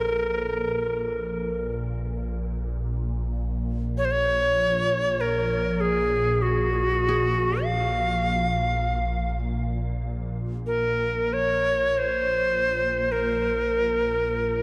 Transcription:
0.00 10.58 A#1 medium
0.00 1.76 A#4 medium
0.00 3.86 A#4 soft
0.00 7.01 C5 soft
3.98 4.06 C#5 medium
4.05 4.13 C5 medium
4.11 5.22 C#5 medium
5.21 5.82 A#4 medium
5.81 6.44 G#4 medium
6.42 7.65 F#4 medium
7.09 14.54 G#4 soft
7.63 9.30 F5 medium
10.59 14.63 A#1 medium
10.67 11.35 A#4 medium
11.33 12.00 C#5 medium
11.98 13.13 C5 medium
13.12 14.63 A#4 medium

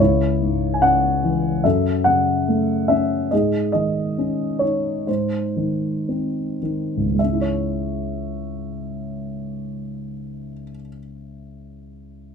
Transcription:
0.00 1.61 C#2 soft
0.00 1.61 E4 soft
0.00 0.78 C#5 medium
0.42 1.61 G#2 soft
0.74 0.82 G#5 soft
0.82 1.62 C#3 soft
0.82 1.67 F#5 medium
1.24 1.64 E3 soft
1.64 3.28 F#2 soft
1.64 3.28 A4 soft
1.64 2.07 E5 medium
2.04 3.28 C#3 soft
2.04 2.92 F#5 medium
2.48 3.30 A3 soft
2.88 3.30 C#4 soft
2.88 3.32 E5 medium
3.31 5.04 G#2 soft
3.31 5.05 G#4 soft
3.31 3.71 D#5 medium
3.72 5.04 D#3 soft
3.72 4.64 D#5 medium
4.18 5.06 C#4 soft
4.59 5.07 D#4 soft
4.59 5.08 C#5 medium
5.07 7.05 G#2 soft
5.07 7.16 D#4 soft
5.07 6.58 C5 soft
5.57 6.61 D#3 soft
6.09 7.16 C4 soft
6.63 7.17 D#3 soft
6.97 10.53 C#2 soft
7.06 10.62 G#2 soft
7.15 10.70 G#3 soft
7.19 10.75 E5 soft
7.23 10.79 C#4 soft
7.32 10.88 E4 soft
7.41 10.97 C#5 soft

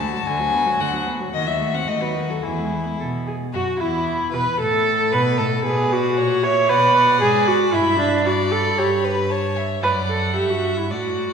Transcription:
0.00 0.18 D2 medium
0.00 0.15 A3 medium
0.00 1.33 F#4 medium
0.00 0.28 A5 medium
0.13 0.25 F#3 soft
0.26 0.71 D2 medium
0.26 0.41 D3 medium
0.26 0.82 G#5 medium
0.40 0.54 F#3 medium
0.53 0.68 B3 medium
0.66 0.82 F#3 medium
0.80 1.24 D2 medium
0.80 0.95 D3 soft
0.80 1.07 F#5 medium
0.93 1.08 F#3 medium
1.07 1.22 B3 soft
1.20 1.33 F#3 soft
1.33 1.78 D#2 medium
1.33 1.49 D#3 medium
1.33 2.45 F#4 medium
1.33 1.49 D#5 medium
1.47 1.62 F#3 medium
1.47 1.76 E5 medium
1.61 1.75 A3 soft
1.74 1.89 C4 soft
1.74 1.90 F#5 medium
1.88 2.33 D#2 soft
1.88 2.03 A3 soft
1.88 2.03 D#5 medium
2.01 2.17 F#3 soft
2.01 2.32 B4 medium
2.15 2.31 D#3 soft
2.29 2.43 F#3 soft
2.29 2.44 A4 medium
2.43 2.90 E2 soft
2.43 2.59 E3 soft
2.43 3.33 E4 soft
2.43 2.99 G#4 medium
2.57 2.73 G#3 soft
2.72 2.87 B3 soft
2.86 2.99 G#3 soft
2.99 3.45 B2 soft
2.99 3.08 A4 medium
3.27 3.35 G#4 medium
3.54 3.62 F#2 medium
3.54 3.78 F#4 medium
3.54 3.62 F#4 medium
3.54 3.82 F#4 medium
3.79 4.33 E2 medium
3.79 4.32 E4 medium
3.79 4.35 E4 medium
4.32 4.42 B2 medium
4.32 4.59 B4 medium
4.32 4.61 B4 medium
4.32 4.60 B4 medium
4.59 5.15 A2 medium
4.59 5.14 A4 medium
4.59 5.13 A4 medium
4.59 5.12 A4 medium
5.12 5.41 B2 medium
5.12 5.39 B4 medium
5.12 5.38 B4 medium
5.12 5.21 B4 medium
5.38 5.65 A2 medium
5.38 5.64 A4 medium
5.38 5.46 A4 medium
5.38 5.65 A4 medium
5.65 6.20 B2 medium
5.65 5.93 G#4 medium
5.65 6.19 B4 medium
5.65 6.19 D5 medium
5.92 6.45 F#4 loud
6.17 6.71 A#2 medium
6.17 6.72 C#5 medium
6.17 6.45 F#5 medium
6.43 6.71 C#5 medium
6.43 6.71 E5 medium
6.69 7.23 B2 medium
6.69 7.20 B4 loud
6.69 6.95 D5 medium
6.69 7.23 F#5 medium
6.96 7.76 D5 medium
7.21 7.74 G#2 medium
7.21 7.49 G#4 medium
7.21 7.72 B5 medium
7.47 7.75 F#4 medium
7.73 8.76 G2 medium
7.73 7.99 E4 loud
7.73 8.26 E5 medium
7.73 8.25 B5 medium
7.99 8.28 D4 medium
8.25 8.54 F#4 medium
8.25 8.79 D5 medium
8.25 9.32 B5 medium
8.52 8.80 A4 medium
8.78 9.81 G2 medium
8.78 9.31 G4 medium
8.78 9.06 C#5 medium
9.05 9.33 B4 medium
9.30 9.83 C#5 medium
9.30 9.58 A5 medium
9.56 9.84 E5 medium
9.82 10.38 F#2 medium
9.82 9.91 B4 loud
9.82 10.36 D5 medium
9.82 10.91 F#5 medium
10.10 10.36 A4 medium
10.36 10.93 G2 medium
10.36 10.51 G4 medium
10.36 10.93 E5 medium
10.50 10.80 F#4 medium
10.78 10.92 E4 medium
10.91 11.33 A2 soft
10.91 11.33 F#4 medium
10.91 11.33 D5 soft
10.91 11.33 F#5 soft

